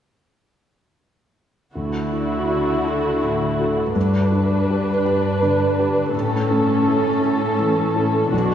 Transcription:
1.74 3.92 D2 soft
1.74 3.92 D3 soft
1.74 3.92 E4 soft
1.74 3.91 F#4 soft
2.12 2.71 E4 soft
2.49 2.82 F#4 soft
2.49 2.82 A4 soft
2.86 3.19 F#4 soft
2.86 3.19 A4 soft
3.22 3.81 A2 soft
3.59 3.92 F#4 soft
3.59 3.92 A4 soft
3.95 6.09 G2 soft
3.95 6.10 G2 soft
3.95 6.10 D4 soft
3.95 6.14 B4 soft
4.32 4.90 D4 soft
4.70 5.02 G4 soft
4.70 5.02 B4 soft
5.05 5.38 G4 soft
5.05 5.38 B4 soft
5.43 6.00 D3 soft
5.79 6.11 G4 soft
5.79 6.11 B4 soft
6.13 8.29 A2 soft
6.13 8.30 A2 soft
6.13 8.29 C#4 soft
6.13 8.29 A4 soft
6.51 7.08 C#4 soft
6.87 7.19 E4 soft
6.87 7.19 A4 soft
7.23 7.55 E4 soft
7.23 7.56 A4 soft
7.59 8.18 E3 soft
7.95 8.29 E4 soft
7.95 8.29 A4 soft
8.33 8.54 B1 soft
8.33 8.54 B2 soft
8.33 8.54 D4 soft
8.33 8.54 F#4 soft

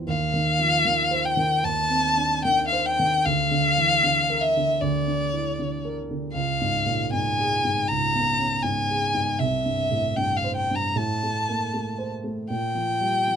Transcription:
0.00 0.10 E3 soft
0.00 0.10 C5 soft
0.07 1.59 D#2 medium
0.07 1.27 F5 medium
0.34 0.75 D#3 soft
0.59 0.85 F3 soft
0.85 1.27 D#3 soft
1.11 1.53 C5 soft
1.25 1.66 G5 medium
1.37 1.79 D#3 soft
1.64 3.21 D#2 soft
1.64 2.44 A5 medium
1.89 2.33 C4 soft
2.17 2.44 D4 soft
2.44 2.88 D#3 soft
2.44 2.64 G5 medium
2.68 2.88 F5 medium
2.72 3.15 C5 soft
2.86 3.27 G5 medium
2.99 3.25 D#3 soft
3.26 4.76 D2 medium
3.26 4.43 F5 loud
3.51 3.92 D3 soft
3.78 4.03 E3 soft
4.04 4.44 D3 soft
4.30 4.70 A#4 soft
4.41 4.82 E5 medium
4.57 4.97 D3 soft
4.80 6.31 D2 soft
4.80 5.96 D5 medium
5.08 5.48 D4 soft
5.33 5.58 E4 soft
5.59 5.99 D3 soft
5.85 6.25 A#4 soft
6.11 6.35 D3 soft
6.33 7.85 C#2 medium
6.33 7.07 F5 medium
6.61 7.02 G#2 soft
6.86 7.12 A#2 soft
7.13 7.54 G#2 soft
7.13 7.89 G#5 medium
7.40 7.79 G#4 soft
7.65 8.04 G#2 soft
7.88 9.36 C#2 soft
7.88 8.64 A#5 medium
8.15 8.54 B3 soft
8.40 8.64 C#4 soft
8.62 9.04 G#2 soft
8.62 9.41 G#5 medium
8.90 9.30 G#4 soft
9.14 9.39 G#2 soft
9.40 10.91 C2 soft
9.40 10.18 E5 medium
9.66 10.06 G2 soft
9.91 10.17 A2 soft
10.16 10.58 G2 soft
10.16 10.38 G5 medium
10.37 10.55 F5 medium
10.44 10.85 C5 soft
10.56 10.77 G5 medium
10.71 10.96 G2 soft
10.75 10.98 A#5 medium
10.96 12.45 A2 soft
10.96 12.12 A5 medium
11.23 11.63 A3 soft
11.49 11.74 A#3 soft
11.74 12.14 A3 soft
11.98 12.39 C5 soft
12.24 12.49 A3 soft
12.50 13.36 A#2 soft
12.50 13.36 G5 medium
12.75 13.16 F3 soft
13.01 13.26 G3 soft
13.27 13.36 F3 soft

